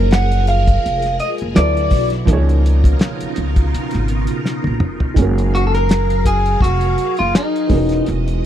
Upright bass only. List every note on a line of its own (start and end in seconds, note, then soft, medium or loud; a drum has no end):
0.00 0.80 F#1 loud
0.86 1.17 F1 medium
1.42 1.55 F#1 medium
1.57 1.89 D2 medium
1.92 2.24 B1 loud
2.28 2.93 C#2 loud
3.22 muted upright bass stroke soft
3.38 3.70 C#2 medium
3.74 muted upright bass stroke soft
3.95 4.26 G#1 medium
4.67 4.82 A#1 medium
4.82 5.14 F1 medium
5.18 6.58 F#1 medium
6.62 6.94 F1 medium
7.20 7.33 F#1 medium
7.71 8.03 E1 medium
8.08 8.40 E1 loud